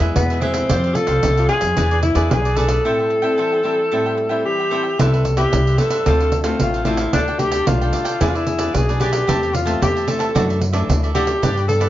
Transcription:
Already playing: E3
0.00 E2 G#3 B3 E4 G#4 B4 E5, pandeiro
0.15 E2 B2 B3, pandeiro
0.30 G#4 B4 E5, pandeiro
0.41 G#3 B3 C4 E4 G#4 B4 E5, pandeiro
0.54 G#4 B4 E5, pandeiro
0.69 F2 F3 G3 C4 F4 G4 C5 F5, pandeiro
0.84 G4 C5 F5, pandeiro
0.95 G3 C4 F4 A4, muted cavaquinho stroke, pandeiro
1.07 C2 G4 C5 F5, pandeiro
1.23 C2 C3 F4 G4 C5 F5, pandeiro
1.37 G3 C4 F4 G4 C5 F5, pandeiro
1.49 F4 G4 G#4 C5 F5, pandeiro
1.61 F2, pandeiro
1.77 E2 E3 B3 D4 E4 G#4 B4 D5, pandeiro
1.91 G#4 B4 D5, pandeiro
2.03 E4, muted cavaquinho stroke, pandeiro
2.15 E2 B3 D4 G#4 B4 D5, pandeiro
2.31 B1 B2 G#4, pandeiro
2.45 G#4 B4 D5, pandeiro
2.56 B3 D4 E4 G#4 A4 B4 D5, pandeiro
2.68 G#4 B4 D5, pandeiro
2.84 A2 G3 C4 E4 A4 C5 E5 G5
2.99 C5 E5 G5
3.10 muted cavaquinho stroke
3.22 G3 C4 E4 C5 E5 G5
3.38 E3 A4 C5 E5 G5
3.52 C5 E5 G5
3.63 G3 C4 E4 A4 C5 E5 G5
3.91 A2 G3 C4 E4 A4 C5 E5 G5
4.06 C5 E5 G5
4.17 muted cavaquinho stroke
4.29 G3 C4 E4 C5 E5 G5
4.46 E3 G4
4.60 C5 E5 G5
4.71 G3 C4 E4 A4 C5 E5 G5
4.83 C5 E5 G5
4.99 C2 C3 G3 B3 E4 G4 A4 B4 C5 E5, pandeiro
5.13 B4 C5 E5, pandeiro
5.25 muted cavaquinho stroke, pandeiro
5.37 G3 B3 E4 G4 B4 C5 E5, pandeiro
5.52 C2 G2, pandeiro
5.67 B4 C5 E5, pandeiro
5.78 G3 B3 E4 G4 A4 B4 C5 E5, pandeiro
5.90 B4 C5 E5, pandeiro
6.06 D2 D3 A3 C4 D4 F4 A4 C5 F5, pandeiro
6.20 A4 C5 F5, pandeiro
6.32 muted cavaquinho stroke, pandeiro
6.44 A3 C4 F4 A4 C5 F5, pandeiro
6.60 A1 A2 F4, pandeiro
6.74 A4 C5 F5, pandeiro
6.85 A3 C4 D4 E4 F4 A4 C5 F5, pandeiro
6.97 A4 C5 F5, pandeiro
7.13 D2 D3 G3 A3 D4 A4 D5 G5, pandeiro
7.28 A4 D5 G5, pandeiro
7.39 G3 A3 D4 G4, muted cavaquinho stroke, pandeiro
7.51 A4 D5 G5, pandeiro
7.67 B1 D3 G3 A3 D4 F4, pandeiro
7.81 A4 D5 G5, pandeiro
7.93 D4 A4 D5 G5, pandeiro
8.04 A4 D5 G5, pandeiro
8.20 E2 E3 B3 D4 E4 G#4 B4 D5, pandeiro
8.28 F4
8.35 E4 G#4 B4 D5, pandeiro
8.47 B3 D4 G#4, muted cavaquinho stroke, pandeiro
8.58 G#4 B4 D5, pandeiro
8.74 B1 B2 G#4, pandeiro
8.88 B3 D4 G#4 B4 D5, pandeiro
9.00 E4 G4 G#4 B4 D5, pandeiro
9.12 G#4 B4 D5, pandeiro
9.27 E2 E3 A3 C4 G4 C5 E5 A5, pandeiro
9.42 C5 E5 A5, pandeiro
9.53 F4, muted cavaquinho stroke, pandeiro
9.66 A3 C4 G4 C5 E5 A5, pandeiro
9.82 E2 E3 G4, pandeiro
9.95 C5 E5 A5, pandeiro
10.07 A3 C4 G4 A4 C5 E5 A5, pandeiro
10.19 C5 E5 A5, pandeiro
10.35 F#2 E3 A3 D4 F#4 A4 D5 E5, pandeiro
10.49 A4 D5 E5, pandeiro
10.61 muted cavaquinho stroke, pandeiro
10.73 E3 A3 D4 A4 D5 E5, pandeiro
10.89 D2 F#2, pandeiro
11.03 A4 D5 E5, pandeiro
11.15 E3 A3 D4 F#4 G4 A4 D5 E5, pandeiro
11.27 A4 D5 E5, pandeiro
11.42 G2 G3 B3 D4 G4 B4 D5, pandeiro
11.57 G4 B4 D5, pandeiro
11.68 G3 B3 D4 A4, muted cavaquinho stroke, pandeiro
11.80 G4 B4 D5, pandeiro

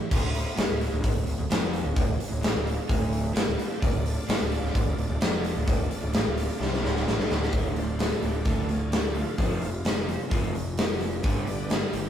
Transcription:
0.10 D1 D2, kick, crash
0.23 D1 D2
0.35 open hi-hat
0.57 G1 G2, snare, open hi-hat
0.69 D1 D2
0.81 open hi-hat
0.92 D1 D2
1.04 G#1 G#2, kick, open hi-hat
1.15 D1 D2
1.26 D1 D2, open hi-hat
1.38 D1 D2
1.50 F1 F2, snare, open hi-hat
1.74 open hi-hat
1.84 D1 D2
1.96 D1 D2, kick, open hi-hat
2.08 D1 D2
2.20 muted overdriven electric guitar stroke, muted fingered electric bass stroke, open hi-hat
2.29 D1 D2
2.41 A1 A2, snare, open hi-hat
2.54 D1 D2
2.67 open hi-hat
2.89 D1 D2, kick, open hi-hat
3.13 open hi-hat
3.34 G1 G2, snare, open hi-hat
3.47 D1 D2
3.52 B3
3.56 C4 D4, muted overdriven electric guitar stroke, muted fingered electric bass stroke, open hi-hat
3.61 E4 F4
3.66 G4 A4
3.73 B4 C5
3.78 D5 E5
3.82 D1 D2 A3 D4 F4 D5, kick, open hi-hat
3.93 D1 D2
4.06 open hi-hat
4.28 G1 G2, snare, open hi-hat
4.39 D1 D2
4.52 open hi-hat
4.62 D1 D2, snare
4.74 G#1 G#2, kick, open hi-hat
4.85 D1 D2
4.97 D1 D2, open hi-hat
5.08 D1 D2
5.21 F1 F2, snare, open hi-hat
5.44 open hi-hat
5.55 D1 D2
5.66 D1 D2, kick, open hi-hat
5.79 D1 D2
5.91 muted overdriven electric guitar stroke, muted fingered electric bass stroke, open hi-hat
6.02 D1 D2
6.13 A1 A2, snare, open hi-hat
6.25 D1 D2
6.37 open hi-hat
6.60 C2 C3, snare
6.73 snare
6.82 D1 D2, snare
6.96 snare
7.05 A1 A2, snare
7.17 G1 G2, snare
7.29 D1 D2, snare
7.43 snare
7.52 D1 D2 A2 D3, kick, open hi-hat
7.76 D2 A2 F3 A3 D4 C5, open hi-hat
7.99 D2 A2 A4, snare, open hi-hat
8.22 D1 D2 A2 G4, open hi-hat
8.45 D2 A2 D3 A4, kick, open hi-hat
8.69 D2 A2 G#4, open hi-hat
8.92 D2 A2 G4, snare, open hi-hat
9.15 D2 A2 F4, open hi-hat
9.38 F1 F2 C3 F3 A3 C4 D4, kick, open hi-hat
9.61 F2 C3 F4, open hi-hat
9.84 F2 C3 D4, snare, open hi-hat
10.08 F2 C3 C4, open hi-hat
10.29 F1 F2 C3 F3 A3 C4, kick, open hi-hat
10.53 F2 C3, open hi-hat
10.78 F2 C3, snare, open hi-hat
11.01 F2 C3, open hi-hat
11.21 G1 G2 D3 G3 B3 D4, kick, open hi-hat
11.45 G2 D3 D5, open hi-hat
11.70 G2 D3 A4, snare, open hi-hat
11.93 G1 G2 D3 G4, open hi-hat

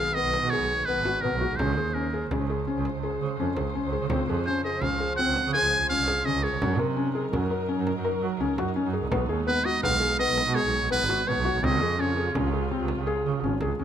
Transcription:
Already playing: D#3 G#3 B3 F5
0.14 B3 D#5
0.24 B1
0.34 frame drum
0.41 B2
0.50 G#4 C#5
0.60 B1
0.78 B1
0.85 B1 B3 B4
0.96 G#1
1.05 F#4, frame drum
1.21 B2 B3 A#4
1.32 B1
1.41 F#4
1.50 B1
1.56 C#2 C#3 C#4 C5, frame drum
1.76 D#2 G#4
1.94 C#4 A#4, frame drum
2.14 G#4
2.30 C#2 C#4, frame drum
2.50 G#4
2.67 C#4
2.75 C#2
2.85 frame drum
2.93 C#2
3.03 G#4
3.21 C#3, frame drum
3.39 F2 C#4
3.57 C#2 G#4, frame drum
3.75 C#4
3.83 C#2
3.92 G#4, frame drum
4.02 C#3
4.09 C#2 F3 C4, frame drum
4.28 F2 G#4
4.46 C#4 C5
4.64 G#4 D#5
4.81 C#2 C#4 F5, frame drum
5.00 G#4
5.16 C4 F#5
5.27 C#2
5.36 frame drum
5.45 C#3
5.53 G#4 G#5
5.62 C#2
5.79 C#2
5.89 C#2 C#4 F5
5.99 C2
6.08 G#4, frame drum
6.25 C#3 C#4 D#5
6.34 C#2
6.43 G#4 C#5
6.52 C#2
6.60 F#2 F#3 C#4 D#4 A#4, frame drum
6.78 C3 A#4
6.96 C#4
7.15 G#4
7.32 F#2 C#4, frame drum
7.51 A#4
7.69 C#4
7.77 F#2
7.87 frame drum
7.95 F#2
8.05 A#4
8.22 F#3
8.40 C#2 C#4
8.58 F#2 F#4, frame drum
8.76 C#4
8.84 F#2
8.93 G#4
9.02 C2
9.10 B1 G#3 B3, frame drum
9.29 D#2 G#4
9.47 B3 B4
9.65 F#4 D#5
9.83 B1 B3 F5, frame drum
10.00 G#4
10.19 B3 D#5
10.29 B1
10.37 frame drum
10.46 B2
10.55 G#4 C#5
10.65 B1
10.83 B1
10.91 B1 B3 B4
11.01 G#1
11.09 F#4, frame drum
11.27 B2 B3 C#5
11.37 B1
11.45 F#4
11.54 B1
11.62 C#2 C3 C#3 C4 F4 D#5, frame drum
11.81 F2 G#4
11.99 C#4 C#5
12.17 G#4
12.35 C#2 C#4, frame drum
12.53 G#4
12.71 C4, frame drum
12.81 C#2
12.88 frame drum
12.98 C#2
13.07 G#4, frame drum
13.25 C#3
13.43 G#1 C#4
13.61 C#2 G#4, frame drum
13.79 D#2 C#4, frame drum

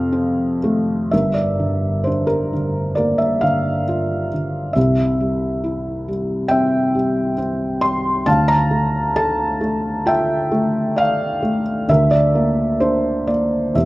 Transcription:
Already playing: F2 C3 A4 F5
0.12 C4
0.64 A3
1.11 G1 G2 A#4 E5
1.34 D5
1.59 D3
2.04 D4 C5
2.27 A#4
2.53 D3
2.95 A#3 A#4 D5
3.18 E5
3.41 D3 F5
3.88 F4
4.33 D3
4.73 C2 C3 G4 E5
5.20 G3
5.64 E4
6.08 G3
6.48 C4 E5 G5
6.95 G3
7.38 C4
7.81 G3 C6
8.26 D2 D3 F5 A5
8.48 A#5
8.71 A3
9.16 A4 A5
9.61 A3
10.06 F4 E5 G5
10.52 A3
10.96 D5 F5
11.43 A3
11.89 D2 D3 A#4 E5
12.11 D5
12.35 A#3
12.80 D4 C5
13.27 A#3 D5
13.75 E1 E2 G4 E5

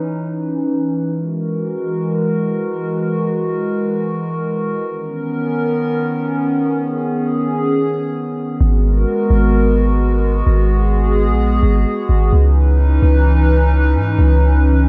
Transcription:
Already playing: E3 C#4 D#4 B4
1.16 G#3 F#4 A#4
4.89 D#3 B3 C#4 A#4
6.75 G#4
8.61 G#1 G#3 B3 F#4 A#4
9.30 G#1
10.47 G#1 G#4
11.28 A#1
11.63 G#1
12.09 G#1
12.32 C#2 E3 C#4 D#4 B4
13.02 C#2
13.95 G#2
14.19 C#2

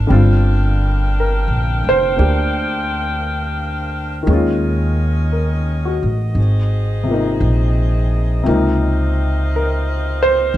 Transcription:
Already playing: A#3 D4 A#4
0.07 G1 D3 G3 C4 F5 G5
0.12 F4
1.20 A#4
1.48 A#1
1.84 F1
1.89 C5
2.16 D2 A#3 D4 G4
4.23 D#3 G#3
4.27 D#2 C#4 D#5
4.33 F4
5.33 A#4
5.85 F#4
6.03 A1
6.35 G#1 C4 G#4
7.03 C3 F3
7.10 A#3 D#4
7.40 A#1
8.43 C#2 C3 F3 A#3 C4 C5 F5
8.48 D#4
9.56 A#4
10.23 C5
10.54 G#1

